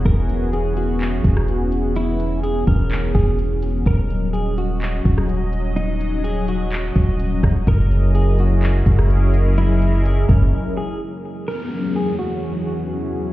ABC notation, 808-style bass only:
X:1
M:4/4
L:1/8
Q:1/4=126
K:Elyd
V:1 name="808-style bass" clef=bass
E,,,4- E,,, E,,,3- | E,,,3 E,,,2 E,,,3 | D,,,4- D,,, D,,,3- | D,,,4- D,,, D,,,2 D,,, |
F,,,4- F,,, F,,,3- | F,,,3 F,,, z4 | z8 |]